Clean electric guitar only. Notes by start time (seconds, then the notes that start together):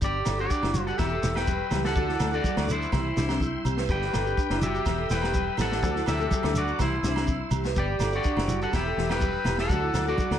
0.04 G4 D5
0.40 F#4 D5
0.87 A4 F#5
0.98 G4 E5
1.36 B4 G5
1.85 A4 F#5
2.34 F#4 D5
2.71 E4 C5
3.91 B4 G5
4.63 G4 E5
5.11 B4 G5
5.61 A4 F#5
6.08 G4 E5
6.58 F#4 D5
6.82 E4 C5
7.78 G4 D5
8.15 F#4 D5
8.63 A4 F#5
8.75 G4 E5
9.11 B4 G5
9.60 A4 F#5
10.08 F#4 D5